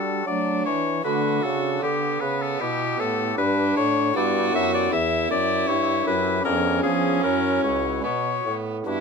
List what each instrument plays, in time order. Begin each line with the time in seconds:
Already playing: pipe organ G3 D4 F#4, bassoon G3, oboe A4
0.26 bassoon F#3, pipe organ F#3 A3, violin D4, oboe D5
0.65 pipe organ E3, bassoon E3, oboe C#5
1.04 bassoon D3, pipe organ D3 A3 D4 F#4, violin F#4, oboe B4
1.43 pipe organ C#3, bassoon C#3, oboe A4
1.82 pipe organ D3, bassoon D3, violin B3, oboe G4
2.21 bassoon C#3, pipe organ C#3, oboe B4
2.42 oboe A4
2.60 pipe organ B2 B3 E4 G4, bassoon B2, oboe G4
2.99 pipe organ A2, bassoon A2, oboe A4
3.37 bassoon G2, pipe organ G2 D4, violin D4, oboe B4
3.77 bassoon A2, pipe organ A2, oboe C#5
4.16 bassoon G2, pipe organ G2 B3 E4 G4, violin F#4, oboe D5
4.53 bassoon F#2, pipe organ F#2, oboe E5
4.74 oboe D5
4.92 bassoon E2, pipe organ E2, violin E4, oboe E5
5.30 bassoon F#2, pipe organ F#2, oboe D5
5.68 bassoon G2, pipe organ G2 E4 G4, oboe C#5
6.06 bassoon F#2, pipe organ F#2, oboe B4
6.45 bassoon F2, pipe organ F2 B3 D4 G#4, violin C#4, oboe A#4
6.83 bassoon F3, pipe organ F3, oboe G#4
7.23 bassoon F#2, pipe organ F#2 C#4 E4 F#4, oboe A#4
7.63 bassoon C#2, pipe organ C#2, oboe C#5
8.03 bassoon B2, pipe organ B2, violin B3, oboe C#5
8.45 bassoon A2, pipe organ A2
8.86 bassoon G2, pipe organ G2 B3 D4 F#4, violin E4, oboe B4